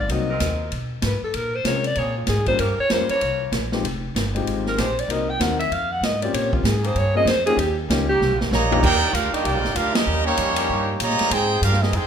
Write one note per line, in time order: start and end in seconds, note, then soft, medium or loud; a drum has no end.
0.00 0.13 D5 loud
0.08 0.39 C2 medium
0.08 0.28 F#3 medium
0.08 0.28 A#3 medium
0.08 0.28 C4 medium
0.08 0.28 D#4 medium
0.08 0.28 F#4 medium
0.08 0.73 D#5 medium
0.08 ride medium
0.28 0.69 F#3 medium
0.28 0.70 C4 medium
0.28 0.69 D#4 medium
0.28 0.70 A#4 loud
0.40 0.71 D#2 loud
0.40 snare medium
0.40 hi-hat pedal medium
0.40 ride medium
0.72 1.02 B2 medium
0.72 ride medium
1.02 1.21 G#2 medium
1.02 1.23 B4 medium
1.02 snare medium
1.02 hi-hat pedal medium
1.02 ride medium
1.22 1.37 A4 loud
1.22 muted upright bass stroke soft
1.34 1.64 A#2 medium
1.34 1.57 A#4 loud
1.34 ride medium
1.55 1.69 C5 loud
1.64 1.95 C3 medium
1.64 1.83 G#3 medium
1.64 1.83 C4 medium
1.64 1.83 C#4 medium
1.64 1.84 F4 medium
1.64 1.84 A#4 medium
1.64 1.87 C#5 loud
1.64 snare medium
1.64 hi-hat pedal medium
1.64 ride medium
1.84 2.00 D5 loud
1.84 ride medium
1.95 2.27 A#2 medium
1.95 2.43 C#3 medium
1.95 2.43 A#3 medium
1.95 2.44 C4 medium
1.95 2.43 G#4 medium
1.95 2.17 C#5 medium
1.95 ride medium
2.17 2.31 F4 medium
2.26 2.58 G#2 medium
2.26 2.47 G#4 medium
2.26 snare medium
2.26 hi-hat pedal medium
2.26 ride medium
2.46 2.58 G3 medium
2.46 2.58 A#3 medium
2.46 2.58 C#4 medium
2.46 2.59 F4 medium
2.46 2.59 A#4 medium
2.46 2.62 C5 loud
2.46 kick medium
2.46 ride medium
2.59 2.77 G2 medium
2.59 2.72 F3 medium
2.59 2.72 A#3 medium
2.59 2.73 C#4 medium
2.59 2.72 G4 medium
2.59 2.79 A#4 medium
2.59 ride medium
2.79 2.93 C#5 loud
2.79 muted upright bass stroke soft
2.90 3.09 F2 medium
2.90 3.08 G3 medium
2.90 3.08 A#3 medium
2.90 3.09 C#4 medium
2.90 3.09 F4 medium
2.90 3.09 A#4 medium
2.90 3.10 C5 loud
2.90 snare medium
2.90 hi-hat pedal medium
2.90 ride medium
3.09 3.50 E3 medium
3.09 3.51 A#3 medium
3.09 3.51 C#4 medium
3.09 3.51 A#4 medium
3.09 3.50 C#5 loud
3.09 muted upright bass stroke soft
3.09 ride medium
3.21 3.51 C2 medium
3.21 ride medium
3.52 3.83 A#1 loud
3.52 snare medium
3.52 hi-hat pedal medium
3.52 ride medium
3.72 3.83 G#3 medium
3.72 3.83 C4 medium
3.72 3.83 D#4 medium
3.72 3.84 F4 medium
3.72 3.84 G4 medium
3.72 snare medium
3.83 4.14 F1 medium
3.83 ride medium
4.15 4.45 G1 loud
4.15 snare medium
4.15 hi-hat pedal medium
4.15 ride medium
4.35 4.75 G#3 medium
4.35 4.75 C4 medium
4.35 4.76 D#4 medium
4.35 4.76 F4 medium
4.35 4.76 G4 medium
4.35 ride medium
4.47 4.77 G#1 medium
4.47 ride medium
4.66 4.81 A#4 medium
4.66 snare soft
4.76 5.07 A#1 medium
4.76 4.90 F3 medium
4.76 4.90 G#3 medium
4.76 4.90 D#4 medium
4.76 4.90 G4 loud
4.76 snare medium
4.76 hi-hat pedal medium
4.76 ride medium
4.80 5.01 C5 loud
4.99 5.14 D5 loud
4.99 ride medium
5.08 5.39 C2 medium
5.08 5.26 A#3 medium
5.08 5.26 C4 medium
5.08 5.27 D#4 medium
5.08 5.27 F#4 medium
5.08 5.27 A#4 medium
5.08 ride medium
5.12 5.31 D#5 medium
5.29 5.43 G5 loud
5.40 5.70 D#2 loud
5.40 5.57 A#3 medium
5.40 5.57 C4 medium
5.40 5.58 D#4 medium
5.40 5.58 F#4 medium
5.40 5.58 A#4 medium
5.40 5.59 F#5 loud
5.40 snare medium
5.40 hi-hat pedal medium
5.40 ride medium
5.60 5.74 E5 loud
5.60 ride medium
5.71 6.00 F2 medium
5.71 5.93 F5 loud
5.71 ride medium
5.92 6.06 F#5 loud
6.01 6.32 G#2 medium
6.01 6.22 D#5 loud
6.01 snare medium
6.01 hi-hat pedal medium
6.01 ride medium
6.22 6.62 A#3 medium
6.22 6.63 C4 medium
6.22 6.63 C#4 medium
6.22 6.63 F4 medium
6.22 6.64 G4 medium
6.22 6.36 D5 loud
6.22 ride medium
6.33 6.63 A#2 loud
6.33 6.53 C#5 medium
6.33 ride medium
6.53 6.67 F4 medium
6.53 kick medium
6.63 6.94 G#2 loud
6.63 6.88 G#4 medium
6.63 snare medium
6.63 hi-hat pedal medium
6.63 ride medium
6.82 7.24 C#3 loud
6.82 7.24 A#3 medium
6.82 7.24 C4 medium
6.82 7.24 G#4 loud
6.82 6.99 C5 loud
6.82 ride medium
6.95 7.25 G2 medium
6.95 7.16 C#5 loud
6.95 ride medium
7.15 7.25 A#3 medium
7.15 7.26 C4 medium
7.15 7.26 C#4 medium
7.15 7.26 F4 medium
7.15 7.26 G#4 medium
7.15 7.30 D#5 loud
7.25 7.56 F2 loud
7.25 7.46 C5 loud
7.25 snare medium
7.25 hi-hat pedal medium
7.25 ride medium
7.46 7.57 A#3 medium
7.46 7.57 C#4 medium
7.46 7.57 D#4 medium
7.46 7.57 F4 medium
7.46 7.58 G4 medium
7.46 7.61 G#4 loud
7.46 ride medium
7.57 7.88 D#2 loud
7.57 7.78 G4 medium
7.57 ride medium
7.80 7.92 A#3 soft
7.89 8.19 C#2 medium
7.89 8.07 A#3 medium
7.89 8.07 C#4 medium
7.89 8.08 C#4 medium
7.89 8.07 D#4 medium
7.89 8.08 F4 medium
7.89 8.08 G4 medium
7.89 snare medium
7.89 hi-hat pedal medium
7.89 ride medium
8.09 8.49 D#3 medium
8.09 8.49 A#3 medium
8.09 8.50 C#4 medium
8.09 8.38 G4 loud
8.09 8.49 G4 loud
8.20 8.30 C2 loud
8.20 snare soft
8.30 8.41 A#1 medium
8.41 8.50 G1 medium
8.41 snare medium
8.51 8.81 A#1 loud
8.51 8.81 C#3 loud
8.51 8.81 G3 loud
8.51 8.81 A#3 loud
8.51 8.82 G4 medium
8.51 8.81 C#5 loud
8.51 8.81 D#5 medium
8.51 8.81 A#5 loud
8.51 snare medium
8.51 hi-hat pedal medium
8.70 9.12 D#3 medium
8.70 8.81 A#3 medium
8.70 9.12 A#3 medium
8.70 8.81 D4 medium
8.70 9.12 D4 medium
8.70 8.82 D#4 medium
8.70 8.82 F4 medium
8.70 8.82 G4 medium
8.70 9.12 G4 medium
8.70 floor tom loud
8.82 9.13 D#2 loud
8.82 9.12 A#3 loud
8.82 9.11 D#4 loud
8.82 9.13 D#4 loud
8.82 9.11 G4 loud
8.82 9.12 A#4 loud
8.82 9.13 D5 loud
8.82 kick medium
8.82 crash medium
8.86 9.13 G5 loud
9.13 9.32 D2 loud
9.13 9.33 D4 medium
9.13 9.33 F4 medium
9.13 9.33 G4 loud
9.13 9.33 A#4 loud
9.13 9.33 F5 loud
9.13 hi-hat pedal medium
9.13 ride medium
9.32 9.74 D#3 loud
9.32 9.44 G3 medium
9.32 9.42 A#3 medium
9.32 9.74 A#3 loud
9.32 9.45 A#3 medium
9.32 9.73 D4 medium
9.32 9.45 D4 medium
9.32 9.42 D#4 medium
9.32 9.73 G4 loud
9.32 9.45 G4 medium
9.32 9.45 D#5 medium
9.32 muted upright bass stroke soft
9.32 ride medium
9.43 9.56 C2 loud
9.43 9.75 A#3 medium
9.43 9.75 D#4 medium
9.43 9.76 D#4 medium
9.43 9.75 G4 loud
9.43 9.75 A#4 loud
9.43 9.77 D5 loud
9.43 9.77 G5 loud
9.43 ride medium
9.56 9.66 A#1 medium
9.64 9.75 G1 medium
9.64 snare soft
9.74 10.06 D2 medium
9.74 9.95 D4 loud
9.74 9.95 F4 loud
9.74 9.94 G4 medium
9.74 9.94 A#4 medium
9.74 9.96 F5 loud
9.74 hi-hat pedal medium
9.74 ride medium
9.94 10.24 G3 medium
9.94 10.24 A#3 medium
9.94 10.27 C#4 loud
9.94 10.26 D#4 medium
9.94 10.25 G4 loud
9.94 10.26 A#4 medium
9.94 10.26 D#5 loud
9.94 snare loud
9.94 ride medium
10.07 10.37 D#2 medium
10.24 10.35 D#3 medium
10.24 10.96 G3 loud
10.24 10.96 A#3 loud
10.24 10.35 A#3 medium
10.24 10.97 A#3 loud
10.24 10.95 C#4 loud
10.24 10.96 D#4 loud
10.24 10.96 G4 loud
10.24 10.35 G4 medium
10.24 10.96 C#5 loud
10.28 10.35 C#4 medium
10.37 10.68 F2 loud
10.37 hi-hat pedal medium
10.37 ride medium
10.56 10.98 D#3 loud
10.56 10.98 A#3 loud
10.56 10.98 C#4 loud
10.56 10.98 G4 loud
10.56 ride medium
10.69 10.99 G2 loud
11.00 11.18 A#2 medium
11.00 11.31 C#3 loud
11.00 11.32 G3 loud
11.00 11.32 A#3 loud
11.00 11.33 G4 loud
11.00 11.33 C#5 loud
11.00 11.33 D#5 medium
11.00 11.33 A#5 loud
11.00 hi-hat pedal medium
11.00 ride medium
11.10 snare soft
11.19 muted upright bass stroke soft
11.19 snare medium
11.19 ride medium
11.31 11.61 G#2 loud
11.31 11.63 C4 loud
11.31 11.63 D#4 loud
11.31 11.63 G#4 loud
11.31 11.63 C5 loud
11.31 11.63 G5 loud
11.31 ride medium
11.62 11.92 G2 loud
11.62 11.82 D4 medium
11.62 11.82 F4 medium
11.62 11.81 G4 medium
11.62 11.81 A#4 loud
11.62 11.82 F5 loud
11.62 hi-hat pedal medium
11.62 ride medium
11.73 snare soft
11.81 11.94 G3 medium
11.81 11.94 C4 medium
11.81 11.93 C4 medium
11.81 11.93 D#4 medium
11.81 11.94 G4 medium
11.81 11.94 G#4 medium
11.81 11.93 D#5 medium
11.81 snare medium
11.92 12.07 F2 loud
11.92 12.07 C4 medium
11.92 12.07 D#4 medium
11.92 12.07 G#4 medium
11.92 12.07 G#4 loud
11.92 12.07 C5 medium
11.92 12.07 G5 loud
11.92 ride medium